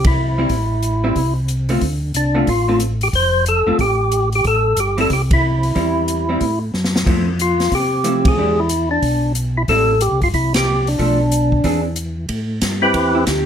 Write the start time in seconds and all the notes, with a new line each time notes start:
Already playing: C2
0.04 E4, kick, ride
0.38 G3 C4 E4
0.49 A1, kick, open hi-hat
0.82 closed hi-hat
1.04 G3 C4 E4
1.16 C2, kick, open hi-hat
1.48 closed hi-hat
1.69 D3 A3 C4 F4, open hi-hat
1.81 D2, kick, open hi-hat
2.14 C2 D4, closed hi-hat
2.35 D3 A3 C4 F4
2.47 A1 F4, kick, open hi-hat
2.68 D3 A3 C4 F4
2.80 closed hi-hat
3.01 G4, open hi-hat
3.13 F1 C5, kick, open hi-hat
3.46 A4, closed hi-hat
3.66 F1 D3 A3 C4 F4
3.79 A1 G4, kick, open hi-hat
4.12 closed hi-hat
4.32 G4, open hi-hat
4.44 A1 A4, kick, open hi-hat
4.77 G1 G4, closed hi-hat
4.98 G3 C4 E4 A4, open hi-hat
5.10 C2 G4, kick, open hi-hat
5.31 E4, kick, ride
5.63 open hi-hat
5.75 E2 G3 C4 E4, kick, open hi-hat
6.08 closed hi-hat
6.29 G3 C4 E4
6.41 A2, kick, open hi-hat
6.74 F#2, snare
6.84 snare
6.96 snare
7.06 F2 F3 A3 C4 E4, kick, crash
7.39 F4, closed hi-hat
7.60 snare, open hi-hat
7.71 C3 G4, kick, open hi-hat
8.04 F3 A3 C4 E4, closed hi-hat
8.25 G#4, kick, ride
8.37 E2 E3 G#3 D4 G4
8.60 E4
8.69 closed hi-hat
8.91 D4
9.02 B1, kick, open hi-hat
9.35 closed hi-hat
9.57 E4
9.68 A1 G3 C4 E4 A4, kick, open hi-hat
10.01 G4, closed hi-hat
10.11 C2
10.21 G1 F4, kick, open hi-hat
10.34 C2 E4, kick, open hi-hat
10.54 G4, snare, ride
10.87 D4, open hi-hat
10.99 B1 F3 A3 D4, kick, open hi-hat
11.32 closed hi-hat
11.52 kick
11.64 E2 E3 C4 D4 G#4, kick, open hi-hat
11.96 closed hi-hat
12.29 A2, kick, ride
12.61 G2, kick, snare, hi-hat pedal, ride
12.82 C4 E4 G4 B4
12.94 E2, kick, ride
13.15 E4
13.27 D2 G4, kick, snare, hi-hat pedal, ride